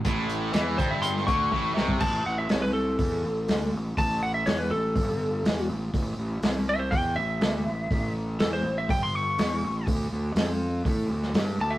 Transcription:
<<
  \new Staff \with { instrumentName = "Lead electric guitar" } { \time 4/4 \key d \major \tempo 4 = 122 r4. c''16 e''16 c'''8 cis'''4. | a''8 fis''16 e''16 cis''16 b'16 a'2 r8 | a''8 fis''16 e''16 cis''16 b'16 a'2 r8 | r4. e''16 c''16 g''8 e''4.~ |
e''8 r8 a'16 c''8 e''16 g''16 c'''16 cis'''4. | r2. r8 a''16 e''16 | }
  \new Staff \with { instrumentName = "Distorted electric guitar" } { \clef bass \time 4/4 \key d \major a,4 e8 g,4 d8 a,8 c8 | r1 | r1 | r1 |
r1 | r1 | }
  \new Staff \with { instrumentName = "Fingered electric bass" } { \clef bass \time 4/4 \key d \major a,,4 e,8 g,,4 d,8 a,,8 c,8 | a,,8 a,,8 c,4 e,8 a,,8 d,8 a,,8 | a,,4 e,8 a,,8 g,,4 e,8 a,,8 | a,,8 a,,8 c,4 e,8 a,,8 d,8 a,,8 |
a,,4 e,8 a,,8 g,,4 e,8 a,,8 | d,8 d,8 f,4 a,8 d,8 g,8 d,8 | }
  \new DrumStaff \with { instrumentName = "Drums" } \drummode { \time 4/4 <hh bd>8 hh8 <hh sn>8 <hh bd>8 hh16 sn16 <hh bd>8 bd8 sn16 bd16 | <cymc bd>4 <hho sn>4 <hho bd>4 <hho sn>4 | <hho bd>4 <hho sn>4 <hho bd>4 <hho sn>4 | <hho bd>4 <hho sn>4 <hho bd>4 <hho sn>4 |
<hho bd>4 <hho sn>4 <hho bd>4 <hho sn>4 | <hho bd>4 <hho sn>4 <hho bd>8. sn16 <hho sn>4 | }
>>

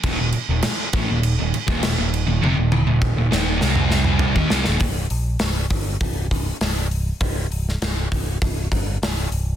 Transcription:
<<
  \new Staff \with { instrumentName = "Distorted electric guitar" } { \clef bass \time 4/4 \key c \dorian \tempo 4 = 100 <ees, bes,>16 <ees, bes,>16 r16 <ees, bes,>16 r8 <a, e>16 <ees, bes,>8 <ees, bes,>16 r16 <ees, bes,>16 <ees, bes,>16 <ees, bes,>8 <ees, bes,>16 | <f, c>16 <ees, bes,>8 <ees, bes,>8 <ees, bes,>16 <ees, bes, ees>8 <c g c'>4~ <c g c'>16 <ees bes>16 <c g>16 <ees, bes,>16 | r1 | r1 | }
  \new Staff \with { instrumentName = "Picked electric bass" } { \clef bass \time 4/4 \key c \dorian ees,,16 ees,,16 r16 ees,,16 r8 a,,16 ees,,8 ees,,16 r16 ees,,16 ees,,16 ees,,8 ees,,16 | f,,16 ees,,8 ees,,8 ees,,16 ees,,8 c,4~ c,16 ees,16 c,16 ees,,16 | c,,8 bes,,8 c,,8 g,,8 c,,4 c,,4 | c,,8 c,,8 c,,8 c,,8 c,,8 g,,8 c,,8 c,,8 | }
  \new DrumStaff \with { instrumentName = "Drums" } \drummode { \time 4/4 <cymc bd>8 cymc8 <cymc sn>8 <cymc bd>8 cymc8 cymc16 <bd sn>16 <cymc sn>8 cymc8 | tommh8 tommh8 bd8 sn8 sn16 toml16 sn16 toml16 tomfh16 bd16 sn16 sn16 | <hho bd>8 hho8 <hho sn>8 <hho bd>8 <hho bd>8 <hho bd>8 <hho sn>8 hho8 | <hho bd>8 hho16 sn16 <hho sn>8 <hho bd>8 <hho bd>8 <hho bd>8 <hho sn>8 hho8 | }
>>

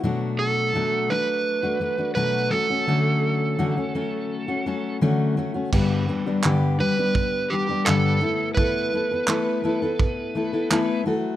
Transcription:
<<
  \new Staff \with { instrumentName = "Electric slide guitar" } { \time 4/4 \key d \lydian \tempo 4 = 84 r8 a'4 b'4. b'8 a'8~ | a'2. r4 | \key g \lydian r4. b'4 g'8 a'4 | b'2.~ b'8 r8 | }
  \new Staff \with { instrumentName = "Steel-string acoustic guitar" } { \time 4/4 \key d \lydian <b, fis a d' fis'>4 <b, fis a d' fis'>8 <fis a d' fis'>8. <a d' fis'>16 <fis a d' fis'>16 <a d' fis'>16 <b, fis a d' fis'>8 <fis a cis' fis'>16 <a cis' fis'>16 | <d fis a cis' fis'>4 <d fis a cis' fis'>16 <a cis' fis'>16 <fis a cis' fis'>8. <a cis' fis'>16 <fis a cis' fis'>8 <d fis a cis' fis'>8 <fis a cis' fis'>16 <a cis' fis'>16 | \key g \lydian <g, d g b d' g'>8 <g b d' g'>16 <g b d' g'>16 <g, d g b d' g'>8 <g b d' g'>16 <g b d' g'>8. <g b d' g'>16 <g b d' g'>16 <g, d g b d' g'>8 <a b e' a'>8 | <a b e' a'>8 <a b e' a'>16 <b e' a'>16 <a b e' a'>8 <a b e' a'>16 <b e' a'>8. <a b e' a'>16 <b e' a'>16 <a b e' a'>8 <fis a fis' a'>8 | }
  \new DrumStaff \with { instrumentName = "Drums" } \drummode { \time 4/4 r4 r4 r4 r4 | r4 r4 r4 r4 | <cymc bd>4 hc4 bd4 hc4 | bd4 hc4 bd4 hc4 | }
>>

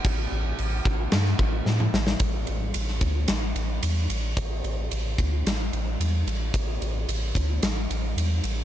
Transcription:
<<
  \new Staff \with { instrumentName = "Sub bass" } { \clef bass \time 4/4 \key c \major \tempo 4 = 111 a,,8 a,,8 a,,8 a,,8 g,8 a,,8 a,8 a,,8 | a,,8 a,,8 a,,8 d,8 a,,8 a,,8 e,8 a,,8 | a,,8 a,,8 a,,8 d,8 a,,8 a,,8 e,8 a,,8 | a,,8 a,,8 a,,8 d,8 a,,8 a,,8 e,8 a,,8 | }
  \new DrumStaff \with { instrumentName = "Drums" } \drummode { \time 4/4 <cymc bd>4 cymc8 bd8 <cymc sn>16 sn16 bd8 sn16 toml16 sn16 sn16 | <bd cymr>8 cymr8 cymr16 sn16 <bd cymr>8 <cymr sn>8 cymr8 cymr8 cymr8 | <bd cymr>8 cymr8 cymr8 <bd cymr>8 <cymr sn>8 cymr8 cymr8 cymr8 | <bd cymr>8 cymr8 cymr8 <bd cymr>8 <cymr sn>8 cymr8 cymr8 cymr8 | }
>>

